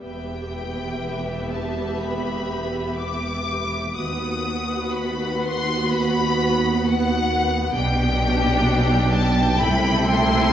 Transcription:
0.03 E1 E2 B3 G4 B4 E5 G5
1.50 A5
2.00 B5
2.97 D6
3.95 D#2 B3 F#4 B4 F#5 D#6
4.93 B5
5.41 C6
5.91 B5
6.85 F#5
7.73 B1 B2 D4 G4 G5
9.12 A5
9.59 C2 C3 A3 E4 A4 B5
10.09 C6

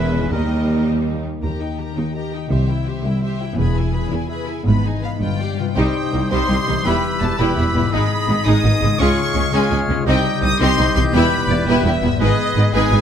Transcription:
Already playing: E1 E2 E3 G#3 E4 G#4 B4 E5
0.00 A#4
0.05 C#4
0.15 D#3 G#4
0.20 A#3
0.24 G4
0.29 D#2 G3 D#4 A#4 D#5
0.33 G4 A#4
1.42 D#2 D#3 G4 A#4 A#5
1.61 D#4 G4 G5
1.78 A#3 G4 A#4 A#5
1.97 D#2 D#4 G4 G5
2.14 G4 A#4 D#5 A#5
2.32 D#4 G4 G5
2.50 C2 C3 G4 C5 E5
2.68 G3 E4 E5 G5
2.86 C4 G4 C5 E5
3.03 C2 E4 G4 E5 G5
3.22 G4 C5 E5
3.40 E4 G4 E5 G5
3.57 E1 E2 E3 G#4 B4 B5
3.75 E4 G#4 G#5
3.93 B3 G#4 B4 B5
4.11 E2 E4 G#4 G#5
4.29 G#4 B4 E5 B5
4.47 E4 G#4 G#5
4.64 G#1 G#2 B3 B4 B5
4.83 B3 D#4 G#4 G#5
5.02 B3 G#4 B4 D#5 F5 B5
5.20 G1 G2 F4 B4 G5
5.38 G3 G4 D5 F5
5.57 C3 F4 B4 G5
5.64 G3
5.68 D#4
5.72 G4 C5
5.77 C2 G3 D#4 G4 G5 D#6
6.12 C2 G3 C4 D#4
6.30 C2 G3 D#4 G4 C5 C6 D#6
6.48 C2 G3 D#4 G4
6.66 C2 E3 G3 C4 D#4
6.71 G3
6.76 E4
6.81 B4
6.85 E1 E2 G3 E4 G4 B4 B5 E6
7.20 E1 E2 G3 B3 E4 A5
7.38 E1 E2 G3 E4 G4 B4 B5 E6
7.56 E1 E2 G3 E4 G4
7.74 E1 E2 G#2 G3 B3 E4
7.80 G#3
7.84 D#4
7.89 G#1 G#3 D#4 G#4 D#5
7.93 G#2 G#3 D#4 B5 D#6
8.26 G#1 G#2 G#3 B3 D#4
8.44 G#1 G#2 G#3 D#4 G#4 D#5 D#6
8.62 G#1 G#2 G#3 B3 D#4
8.80 G#1 G#2 C#3 G#3 B3 D#4
8.86 G#3
8.91 C#4
8.95 C#2 F4 G#4 C#5
8.99 C#2 G#3 C#4 F4 G#4 C#6 F6
9.35 C#2 G#3 C#4
9.53 C#2 G#3 C#4 F4 G#4 C#5 G#5 F6
9.71 C#2 G#3 C#4 F4
9.88 C#2 C3 G#3 C#4
9.93 C4
9.98 D#4
10.02 C2 D#4 G4
10.06 C2 G3 C4 D#4 G4 D#5 G5 G6
10.41 C2 C4 D#4 G4 D#6
10.60 C2 G3 C4 D#4 G4 D#5 C6
10.78 C2 C4 D#4 C5
10.95 C2 E3 C4 D#4 G4 C6
11.00 B3
11.04 E4
11.09 E1 G4 B4
11.14 E2 G3 B3 E4 B4 B5
11.48 E1 E2 B3 E4 D5
11.67 E1 E2 G3 B3 E4 G4 B4 E5
11.84 E1 E2 B3 E4 G4
12.02 E1 E2 G#2 B3 E4
12.08 G#3
12.13 B3
12.17 G#1 G#3 D#4 G#4 B4 D#5
12.21 G#2 G#3 B3 G#4 B4 D#6
12.55 G#1 G#2 G#3 B3 D#4
12.72 G#1 G#2 G#3 B3 D#4 G#4 B4 G#5 D#6
12.91 G#1 G#2 G#3 D#4 G#4

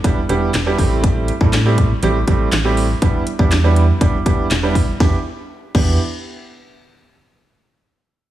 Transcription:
0.04 E1 G3 B3 D4 E4 G4, kick, closed hi-hat
0.29 E1 G3 B3 D4 E4 G4, closed hi-hat
0.54 E1, snare, clap, closed hi-hat
0.66 G3 B3 D4 E4 G4
0.78 A1 A3 C4 E4 G4, kick, open hi-hat
1.04 kick, closed hi-hat
1.28 closed hi-hat
1.41 A2 G3 A3 C4 E4 A4, kick
1.53 snare, clap, closed hi-hat
1.66 G3 A3 C4 E4 G4
1.78 kick, closed hi-hat
2.03 A1 G3 A3 C4 E4 G4, closed hi-hat
2.27 A1 G3 A3 C4 E4 G4, kick, closed hi-hat
2.52 A1, snare, clap, closed hi-hat
2.65 G3 A3 C4 E4 G4
2.77 open hi-hat
3.02 E1 G3 B3 D4 E4 G4, kick, closed hi-hat
3.27 closed hi-hat
3.39 E2 G3 B3 D4 E4 G4, kick
3.52 snare, clap, closed hi-hat
3.64 G3 B3 D4 E4 G4
3.76 closed hi-hat
4.01 E1 G3 B3 D4 E4 G4, kick, closed hi-hat
4.26 E1 G3 B3 D4 E4 G4, kick, closed hi-hat
4.51 E1, snare, clap, closed hi-hat
4.63 G3 B3 D4 E4 G4
4.75 kick, open hi-hat
5.00 E2 B3 D4 E4 G4, kick, snare
5.75 E2 B3 D4 E4 G4, kick, crash

